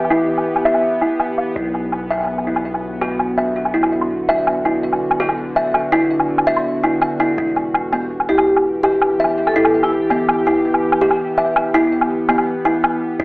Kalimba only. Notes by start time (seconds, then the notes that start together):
0.10 E4
0.65 E5
1.01 E4
1.56 E4
2.11 E5
2.47 E4
3.01 F#4
3.38 E5
3.74 E4
4.29 E5
4.65 E4
5.20 F#4
5.56 E5
5.92 E4
6.47 E5
6.83 E4
7.20 E4
7.38 E4
7.93 B3
8.29 E4
8.83 G4
9.20 E5
9.56 E4
10.11 B3
10.47 E4
11.01 G4
11.38 E5
11.74 E4
12.29 B3
12.65 E4
13.20 E4